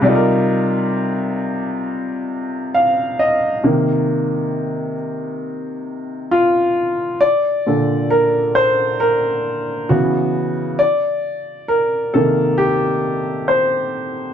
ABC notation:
X:1
M:4/4
L:1/16
Q:"Swing 16ths" 1/4=67
K:Cdor
V:1 name="Upright piano"
z12 f2 e2 | z12 F4 | d4 B2 c2 B4 ^F4 | d4 B2 A2 G4 c3 z |]
V:2 name="Upright piano" clef=bass
[C,G,EFABd]16 | [C,E,B,]6 z8 z2 | z2 [B,,D,A]6 z4 [_D,_F,_C]2 z2 | z6 [C,E,B,]8- [C,E,B,]2 |]